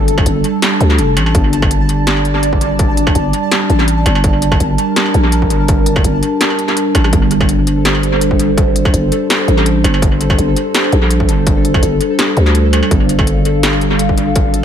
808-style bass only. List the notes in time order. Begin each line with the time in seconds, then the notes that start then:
Already playing: G1
0.26 G1
0.81 D2
0.99 F1
1.17 A1
1.35 G1
3.15 G1
3.70 A1
4.06 G1
4.60 G1
5.14 A#1
5.50 G1
6.04 G1
6.95 A1
7.13 G1
8.94 G1
9.48 A1
9.84 G1
10.38 G1
10.93 A#1
11.29 G1
11.83 G1
12.37 D2
12.91 G1